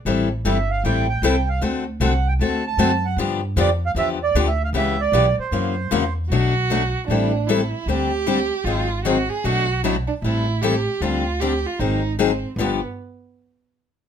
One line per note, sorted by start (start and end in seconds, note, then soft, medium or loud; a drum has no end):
0.05 0.43 A1 medium
0.05 0.27 E3 medium
0.05 0.28 G3 medium
0.05 0.28 C4 medium
0.05 0.28 E4 medium
0.05 0.28 A4 medium
0.45 0.83 G1 medium
0.45 0.56 E3 medium
0.45 0.56 G3 medium
0.45 0.56 C4 medium
0.45 0.57 E4 medium
0.45 0.57 A4 medium
0.45 0.71 E5 medium
0.70 0.83 F5 medium
0.84 1.22 A1 medium
0.84 1.06 E3 medium
0.84 1.06 G3 medium
0.84 1.06 C4 medium
0.84 1.06 E4 medium
0.84 1.06 A4 medium
0.84 1.07 G5 loud
1.09 1.23 G5 medium
1.22 1.60 C2 medium
1.22 1.34 E3 loud
1.22 1.35 G3 loud
1.22 1.35 C4 loud
1.22 1.35 E4 loud
1.22 1.35 A4 loud
1.22 1.49 G5 medium
1.49 1.62 F5 medium
1.61 1.99 D2 medium
1.61 1.83 D3 medium
1.61 1.83 A3 medium
1.61 1.83 C4 medium
1.61 1.84 F#4 medium
1.61 1.84 A4 medium
2.00 2.38 C2 medium
2.00 2.12 D3 medium
2.00 2.12 A3 medium
2.00 2.13 C4 medium
2.00 2.13 F#4 loud
2.00 2.13 A4 loud
2.00 2.28 F#5 medium
2.28 2.34 G5 medium
2.39 2.77 D2 medium
2.39 2.62 D3 medium
2.39 2.62 A3 medium
2.39 2.62 C4 medium
2.39 2.62 F#4 medium
2.39 2.62 A4 medium
2.39 2.65 A5 loud
2.67 3.06 A5 loud
2.77 3.16 F#2 medium
2.77 2.90 D3 medium
2.77 2.90 A3 loud
2.77 2.90 C4 loud
2.77 2.91 F#4 loud
2.77 2.91 A4 loud
3.05 3.18 F#5 medium
3.17 3.55 G2 medium
3.17 3.40 D3 medium
3.17 3.40 F3 medium
3.17 3.40 B3 medium
3.17 3.40 D4 medium
3.17 3.40 G4 medium
3.56 3.94 F2 medium
3.56 3.68 D3 medium
3.56 3.68 F3 medium
3.56 3.69 B3 medium
3.56 3.69 D4 loud
3.56 3.69 G4 loud
3.56 3.70 D5 medium
3.86 3.91 F5 loud
3.95 4.33 E2 medium
3.95 4.17 D3 medium
3.95 4.18 F3 medium
3.95 4.18 B3 medium
3.95 4.18 D4 medium
3.95 4.18 G4 medium
3.95 4.09 E5 loud
4.24 4.45 D5 medium
4.35 4.72 D2 medium
4.35 4.47 D3 loud
4.35 4.47 F3 loud
4.35 4.47 B3 loud
4.35 4.47 D4 loud
4.35 4.47 G4 loud
4.47 4.62 E5 medium
4.64 4.70 F5 medium
4.73 5.11 C#2 medium
4.73 4.96 C#3 medium
4.73 4.96 E3 medium
4.73 4.96 B3 medium
4.73 4.96 C#4 medium
4.73 4.96 G4 medium
4.73 5.01 E5 loud
5.00 5.36 D5 loud
5.12 5.36 B1 medium
5.12 5.25 C#3 medium
5.12 5.25 E3 medium
5.12 5.25 B3 medium
5.12 5.25 C#4 medium
5.12 5.25 G4 medium
5.38 6.13 C5 medium
5.38 muted upright bass stroke soft
5.51 5.90 F#2 medium
5.51 5.74 C#3 medium
5.51 5.74 E3 medium
5.51 5.74 A#3 medium
5.51 5.74 C#4 medium
5.51 5.74 F#4 medium
5.91 6.29 E2 medium
5.91 6.03 C#3 medium
5.91 6.03 E3 medium
5.91 6.03 A#3 loud
5.91 6.03 C#4 loud
5.91 6.03 F#4 loud
6.30 6.93 B1 medium
6.30 6.53 B2 medium
6.30 6.53 F#3 medium
6.30 6.53 A3 medium
6.30 6.53 D4 medium
6.30 7.04 F#4 medium
6.30 6.53 F#4 medium
6.70 6.81 B2 medium
6.70 6.82 F#3 medium
6.70 6.82 A3 medium
6.70 6.82 D4 medium
6.70 6.82 F#4 medium
7.08 7.71 A1 medium
7.08 7.31 E3 medium
7.08 7.31 G3 medium
7.08 7.31 C4 medium
7.08 7.48 D4 medium
7.08 7.32 E4 medium
7.08 7.32 A4 medium
7.47 7.60 E3 medium
7.47 7.60 G3 medium
7.47 7.60 C4 medium
7.47 7.89 E4 medium
7.47 7.60 E4 medium
7.47 7.61 A4 loud
7.86 8.49 D2 medium
7.86 8.09 D3 medium
7.86 8.10 G3 medium
7.86 8.10 C4 medium
7.86 8.10 D4 medium
7.86 8.66 G4 loud
7.86 8.10 G4 medium
8.26 8.38 D3 medium
8.26 8.38 G3 medium
8.26 8.38 C4 medium
8.26 8.38 D4 medium
8.26 8.39 G4 medium
8.64 9.28 G#1 medium
8.64 8.87 D#3 medium
8.64 8.88 F#3 medium
8.64 8.88 C4 medium
8.64 8.88 D#4 medium
8.64 9.04 F4 medium
8.64 8.88 G#4 medium
9.04 9.16 D#3 medium
9.04 9.17 F#3 loud
9.04 9.17 C4 loud
9.04 9.17 D#4 medium
9.04 9.31 F#4 medium
9.04 9.17 G#4 medium
9.29 9.46 G#4 medium
9.44 10.07 B1 medium
9.44 9.66 B2 medium
9.44 9.66 F#3 medium
9.44 9.66 A3 medium
9.44 9.66 D4 medium
9.44 9.83 F#4 loud
9.44 9.67 F#4 medium
9.84 9.95 B2 medium
9.84 9.95 F#3 medium
9.84 9.95 A3 medium
9.84 9.96 D4 medium
9.84 9.95 E4 medium
9.84 9.96 F#4 medium
10.07 10.14 D4 medium
10.22 10.85 A1 medium
10.22 10.45 E3 medium
10.22 10.45 G3 medium
10.22 10.46 C4 medium
10.22 10.63 E4 medium
10.22 10.46 E4 medium
10.22 10.46 A4 medium
10.61 10.74 E3 medium
10.61 10.74 G3 medium
10.61 10.74 C4 medium
10.61 10.74 E4 medium
10.61 11.03 G4 medium
10.61 10.74 A4 loud
11.01 11.64 D2 medium
11.01 11.23 D3 medium
11.01 11.23 G3 medium
11.01 11.23 C4 medium
11.01 11.23 D4 medium
11.01 11.42 F4 medium
11.01 11.24 G4 medium
11.40 11.52 D3 medium
11.40 11.52 G3 medium
11.40 11.53 C4 medium
11.40 11.53 D4 medium
11.40 11.67 G4 medium
11.40 11.53 G4 medium
11.66 11.81 F4 medium
11.79 12.42 G#1 medium
11.79 12.01 D#3 soft
11.79 12.01 F#3 medium
11.79 12.01 C4 medium
11.79 12.19 D#4 medium
11.79 12.02 D#4 medium
11.79 12.02 G#4 medium
12.19 12.30 D#3 medium
12.19 12.30 F#3 medium
12.19 12.30 C4 medium
12.19 12.56 C4 medium
12.19 12.31 D#4 medium
12.19 12.31 G#4 medium
12.56 12.80 G1 medium
12.56 12.78 G2 medium
12.56 12.78 D3 medium
12.56 12.78 F3 medium
12.56 12.81 B3 medium
12.60 12.79 B3 medium
12.60 12.79 D4 medium
12.60 12.79 G4 medium